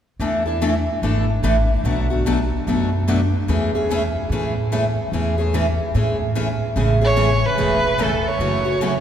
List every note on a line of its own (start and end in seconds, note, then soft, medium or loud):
0.20 0.86 E2 medium
0.20 0.42 E3 medium
0.20 0.42 A3 medium
0.20 0.42 D4 medium
0.20 0.42 E4 medium
0.20 0.43 A4 medium
0.46 0.61 D4 soft
0.46 0.61 E4 soft
0.46 0.61 A4 soft
0.62 0.73 E3 medium
0.62 0.73 A3 medium
0.62 0.73 D4 medium
0.62 0.73 E4 medium
0.62 0.73 A4 medium
1.02 1.37 G#1 medium
1.02 1.24 E3 medium
1.02 1.24 A3 medium
1.02 1.24 D4 medium
1.02 1.25 E4 medium
1.02 1.25 A4 medium
1.43 1.78 A1 medium
1.43 1.55 E3 medium
1.43 1.55 A3 medium
1.43 1.55 D4 medium
1.43 1.55 E4 medium
1.43 1.55 A4 medium
1.84 2.50 B1 medium
1.84 2.06 B2 medium
1.84 2.06 F#3 medium
1.84 2.06 A3 medium
1.84 2.06 D4 medium
1.84 2.06 F#4 medium
1.84 2.07 B4 medium
2.10 2.25 A3 soft
2.10 2.26 D4 soft
2.10 2.25 F#4 soft
2.26 2.37 B2 medium
2.26 2.37 F#3 medium
2.26 2.37 A3 medium
2.26 2.38 D4 medium
2.26 2.38 F#4 medium
2.26 2.38 B4 medium
2.67 3.32 F#2 medium
2.67 2.88 B2 medium
2.67 2.89 F#3 medium
2.67 2.89 A3 medium
2.67 2.89 D4 medium
2.67 2.89 F#4 medium
2.67 2.88 B4 medium
3.08 3.19 B2 medium
3.08 3.19 F#3 medium
3.08 3.19 A3 medium
3.08 3.19 D4 medium
3.08 3.19 F#4 medium
3.08 3.19 B4 medium
3.48 4.14 E2 medium
3.48 3.70 E3 medium
3.48 3.70 G#3 medium
3.48 3.70 A3 medium
3.48 3.70 C#4 medium
3.48 3.70 E4 medium
3.48 3.70 G#4 medium
3.48 3.70 A4 medium
3.75 3.90 A3 soft
3.75 3.90 C#4 soft
3.75 3.89 G#4 soft
3.90 4.01 E3 medium
3.90 4.01 G#3 medium
3.90 4.02 A3 medium
3.90 4.02 C#4 medium
3.90 4.01 E4 medium
3.90 4.02 G#4 medium
3.90 4.01 A4 medium
4.30 4.96 A2 medium
4.30 4.52 E3 medium
4.30 4.53 G#3 medium
4.30 4.53 A3 medium
4.30 4.53 C#4 medium
4.30 4.53 E4 medium
4.30 4.53 G#4 medium
4.30 4.53 A4 medium
4.72 4.83 E3 medium
4.72 4.83 G#3 medium
4.72 4.83 A3 medium
4.72 4.83 C#4 medium
4.72 4.84 E4 medium
4.72 4.84 G#4 medium
4.72 4.84 A4 medium
5.12 5.78 E2 medium
5.12 5.34 E3 medium
5.12 5.34 G#3 medium
5.12 5.34 A3 medium
5.12 5.34 C#4 medium
5.12 5.34 E4 medium
5.12 5.35 G#4 medium
5.12 5.34 A4 medium
5.38 5.53 A3 soft
5.38 5.53 C#4 soft
5.38 5.53 G#4 medium
5.54 5.65 E3 medium
5.54 5.65 G#3 medium
5.54 5.65 A3 medium
5.54 5.65 C#4 medium
5.54 5.65 E4 medium
5.54 5.66 G#4 medium
5.54 5.65 A4 medium
5.95 6.60 A2 medium
5.95 6.16 E3 medium
5.95 6.16 G#3 medium
5.95 6.16 A3 medium
5.95 6.16 C#4 medium
5.95 6.16 E4 medium
5.95 6.16 G#4 medium
5.95 6.16 A4 medium
6.35 6.47 E3 medium
6.35 6.47 G#3 medium
6.35 6.47 A3 medium
6.35 6.47 C#4 medium
6.35 6.47 E4 medium
6.35 6.47 G#4 medium
6.35 6.47 A4 medium
6.76 7.42 A1 medium
6.76 6.97 C#3 medium
6.76 6.98 E3 medium
6.76 6.98 G#3 medium
6.76 6.98 A3 medium
6.76 6.98 C#4 medium
6.76 6.98 E4 medium
6.76 6.98 G#4 medium
6.76 6.98 A4 medium
7.01 7.16 A3 soft
7.01 7.16 C#4 soft
7.01 7.16 G#4 medium
7.01 7.47 C#5 medium
7.16 7.28 C#3 medium
7.16 7.28 E3 medium
7.16 7.29 G#3 medium
7.16 7.28 A3 medium
7.16 7.28 C#4 medium
7.16 7.30 E4 medium
7.16 7.29 G#4 medium
7.16 7.30 A4 medium
7.46 8.05 B4 medium
7.57 8.23 E1 medium
7.57 7.79 C#3 medium
7.57 7.79 E3 medium
7.57 7.80 G#3 medium
7.57 7.80 A3 medium
7.57 7.80 C#4 medium
7.57 7.80 E4 medium
7.57 7.80 G#4 medium
7.57 7.80 A4 medium
7.98 8.10 C#3 medium
7.98 8.10 E3 medium
7.98 8.11 G#3 medium
7.98 8.11 A3 medium
7.98 8.11 C#4 medium
7.98 8.12 E4 medium
7.98 8.11 G#4 medium
7.98 8.12 A4 medium
8.03 8.30 A4 medium
8.28 9.00 C#5 medium
8.39 9.00 F#1 medium
8.39 8.62 C#3 medium
8.39 8.62 E3 medium
8.39 8.61 F#3 medium
8.39 8.62 A3 medium
8.39 8.62 C#4 medium
8.39 8.62 E4 medium
8.39 8.62 F#4 medium
8.39 8.62 A4 medium
8.65 8.80 A3 soft
8.65 8.81 C#4 soft
8.65 8.80 F#4 soft
8.81 8.93 C#3 medium
8.81 8.93 E3 medium
8.81 8.93 F#3 medium
8.81 8.93 A3 medium
8.81 8.93 C#4 medium
8.81 8.93 E4 medium
8.81 8.93 F#4 medium
8.81 8.93 A4 medium